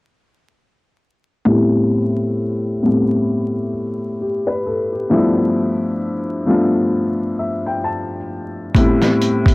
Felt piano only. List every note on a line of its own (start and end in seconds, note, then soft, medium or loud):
1.45 2.74 A2 loud
1.45 2.74 G3 medium
1.45 2.74 B3 medium
1.45 2.75 C4 medium
1.45 2.75 E4 loud
2.83 3.68 A2 medium
2.83 3.68 G3 medium
2.83 3.69 B3 medium
2.83 3.69 C4 medium
2.83 3.69 G4 medium
4.21 4.45 G4 medium
4.47 4.65 B4 medium
4.66 4.90 A4 medium
4.92 5.35 G4 medium
5.10 6.38 G2 loud
5.10 6.38 F3 medium
5.10 6.38 A3 medium
5.10 6.38 B3 medium
5.10 6.39 D4 medium
5.10 6.39 E4 loud
6.46 8.16 G2 medium
6.46 8.17 F3 medium
6.46 8.17 A3 medium
6.46 8.17 B3 medium
6.46 8.18 D4 medium
6.46 8.18 F4 medium
7.39 7.62 E5 medium
7.66 7.84 G5 medium
7.84 8.71 A5 medium
8.75 9.55 A2 loud
8.75 9.55 G3 medium
8.75 9.55 B3 medium
8.75 9.55 C4 medium
8.75 9.55 E4 loud